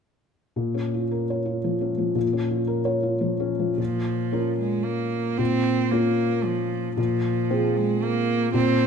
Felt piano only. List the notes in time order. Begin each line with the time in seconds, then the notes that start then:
0.56 A#2
0.74 C#4
0.94 F4
1.11 A#4
1.30 C#5
1.45 F4
1.64 F3
1.81 C#4
1.98 F3
2.15 A#2
2.33 C#4
2.51 F4
2.67 A#4
2.85 C#5
3.03 F4
3.21 F3
3.40 C#4
3.59 F3
3.78 A#2
4.32 C#4 F4 A#4
5.39 A#2
5.92 C#4 F4 A#4
6.97 A#2
7.50 C4 F4 G#4
8.54 A#2